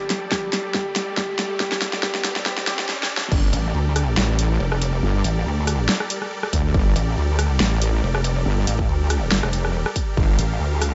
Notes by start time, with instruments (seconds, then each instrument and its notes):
Already playing: grand piano G3 G4, supersaw synth G3 G4 A4 D5, riser
0.10 snare, closed hi-hat
0.32 grand piano G3 G4, kick, snare
0.53 snare, closed hi-hat
0.74 grand piano G3 G4, kick, snare
0.96 snare, closed hi-hat
1.17 grand piano G3 G4, kick, snare
1.39 snare, closed hi-hat
1.60 grand piano G3 G4, kick, snare
1.72 snare
1.82 snare, closed hi-hat
1.93 snare
2.03 grand piano G3 G4, kick, snare
2.15 snare
2.24 snare, closed hi-hat
2.36 snare
2.46 grand piano G3 G4, kick, snare
2.58 snare
2.67 grand piano G3 G4, snare, closed hi-hat
2.79 snare
2.89 snare
3.03 snare
3.17 snare
3.32 wobble bass G1, supersaw synth G3 G4 A4 A#4 D5, kick, crash
3.53 wobble bass A1, closed hi-hat
3.74 wobble bass D2
3.96 cross-stick, open hi-hat
4.17 wobble bass A1, snare
4.39 closed hi-hat
4.60 wobble bass F1
4.72 cross-stick
4.82 closed hi-hat
5.03 wobble bass G1
5.24 wobble bass A1, closed hi-hat
5.46 wobble bass D2
5.67 cross-stick, open hi-hat
5.89 snare
6.00 cross-stick
6.10 closed hi-hat
6.22 cross-stick
6.43 cross-stick
6.53 wobble bass D2, kick, closed hi-hat
6.74 wobble bass G1, kick
6.96 wobble bass A1, closed hi-hat
7.17 wobble bass D2
7.39 cross-stick, open hi-hat
7.60 wobble bass A1, snare
7.82 closed hi-hat
8.03 wobble bass F1
8.15 cross-stick
8.24 closed hi-hat
8.46 wobble bass G1
8.67 wobble bass A1, closed hi-hat
8.79 kick
8.89 wobble bass D2
9.10 cross-stick, open hi-hat
9.32 wobble bass G1, snare
9.43 wobble bass F1, cross-stick
9.53 closed hi-hat
9.65 cross-stick
9.86 cross-stick
9.96 kick, closed hi-hat
10.17 wobble bass G1, supersaw synth F5, kick
10.39 wobble bass A1, closed hi-hat
10.60 wobble bass D2
10.82 cross-stick, open hi-hat